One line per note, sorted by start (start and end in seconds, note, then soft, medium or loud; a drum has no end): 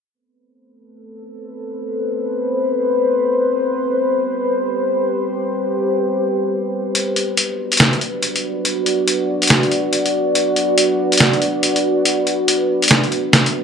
0.14 3.51 A4 medium
0.14 6.91 B4 medium
0.14 6.91 C5 medium
3.54 6.91 G4 medium
6.95 13.64 F#4 medium
6.95 13.64 B4 medium
6.95 13.64 D5 loud
6.95 closed hi-hat medium
7.16 closed hi-hat soft
7.37 closed hi-hat medium
7.72 closed hi-hat soft
7.72 closed hi-hat medium
7.77 snare loud
7.77 closed hi-hat medium
7.80 closed hi-hat medium
7.93 closed hi-hat soft
8.01 closed hi-hat soft
8.23 closed hi-hat medium
8.36 closed hi-hat soft
8.65 closed hi-hat medium
8.86 closed hi-hat medium
9.08 closed hi-hat medium
9.42 closed hi-hat soft
9.42 closed hi-hat medium
9.47 snare loud
9.47 closed hi-hat medium
9.50 closed hi-hat medium
9.63 closed hi-hat soft
9.72 closed hi-hat soft
9.93 closed hi-hat medium
10.06 closed hi-hat soft
10.35 closed hi-hat medium
10.56 closed hi-hat medium
10.78 closed hi-hat medium
11.12 closed hi-hat soft
11.12 closed hi-hat medium
11.18 snare loud
11.18 closed hi-hat medium
11.20 closed hi-hat medium
11.33 closed hi-hat soft
11.42 closed hi-hat soft
11.63 closed hi-hat medium
11.76 closed hi-hat medium
12.05 closed hi-hat medium
12.27 closed hi-hat medium
12.48 closed hi-hat medium
12.82 closed hi-hat soft
12.82 closed hi-hat medium
12.88 snare loud
12.88 closed hi-hat medium
12.91 closed hi-hat medium
13.04 closed hi-hat soft
13.12 closed hi-hat soft
13.33 snare loud
13.33 closed hi-hat medium
13.46 closed hi-hat medium